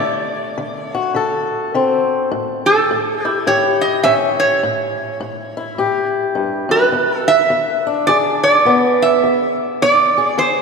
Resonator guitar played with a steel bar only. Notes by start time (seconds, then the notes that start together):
Already playing: D5
0.86 C#5
2.66 A4
3.25 G4
3.47 C#5
3.81 D#5
4.03 E5
4.40 C#5
6.71 B4
7.17 A4
7.28 E5
8.07 D5
8.43 D5
9.02 E5
9.82 D5
10.39 C5